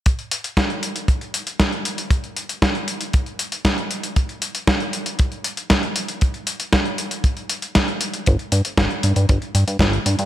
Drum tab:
HH |xxxxxxxxxxxxxxxx|xxxxxxxxxxxxxxxx|xxxxxxxxxxxxxxxx|xxxxxxxxxxxxxxxx|
SD |----o-------o---|----o-------o---|----o-------o---|----o-------o---|
BD |o---o---o---o---|o---o---o---o---|o---o---o---o---|o---o---o---o---|

HH |xxxxxxxxxxxxxxxx|
SD |----o-------o---|
BD |o---o---o---o---|